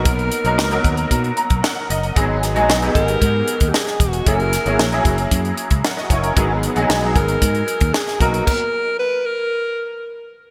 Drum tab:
CC |----------------|----------------|----------------|----------------|
HH |xxxx-xxxxxxx--xx|x-xx-xxxx-xx-xxx|xxxx-xxxxxxx--xx|x-xx--xxxxxx-xxx|
SD |----o-------o---|--o-o-------oo--|--o-o-------oo--|----o-------oo--|
BD |o-----o-o--o----|o-----o-o--o--o-|o-----o-o--o--o-|o-----o-o--o--o-|

CC |x---------------|
HH |----------------|
SD |----------------|
BD |o---------------|